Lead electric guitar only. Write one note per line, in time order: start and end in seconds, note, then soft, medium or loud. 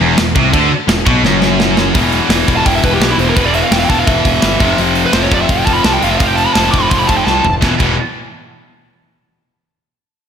2.57 2.65 A5 medium
2.65 2.74 G5 medium
2.75 2.83 E5 medium
2.84 2.92 B4 medium
2.94 3.01 G4 medium
3.02 3.10 G4 medium
3.12 3.16 E4 medium
3.20 3.28 C5 medium
3.30 3.36 A#4 medium
3.37 3.45 B4 medium
3.46 3.54 D5 medium
3.55 3.63 E5 loud
3.64 3.72 F5 medium
3.72 3.78 G5 loud
3.78 3.84 F5 medium
3.85 3.89 G5 medium
3.90 3.98 A5 loud
3.99 4.07 F5 medium
4.07 4.78 E5 medium
5.06 5.14 B4 medium
5.14 5.24 C5 medium
5.24 5.32 C#5 medium
5.34 5.41 D5 medium
5.41 5.49 E5 medium
5.51 5.59 F5 medium
5.59 5.65 G5 medium
5.66 5.75 A5 medium
5.73 5.83 B5 medium
5.84 5.93 A5 medium
5.93 6.03 G5 medium
6.03 6.11 F5 medium
6.11 6.18 E5 medium
6.18 6.27 F5 medium
6.27 6.37 G5 medium
6.36 6.46 A5 medium
6.46 6.53 B5 medium
6.54 6.71 A5 medium
6.71 6.82 D6 loud
6.82 6.90 B5 medium
6.90 6.98 C6 loud
6.99 7.08 B5 medium
7.07 7.17 A5 medium
7.17 7.25 G5 medium
7.26 7.51 A5 medium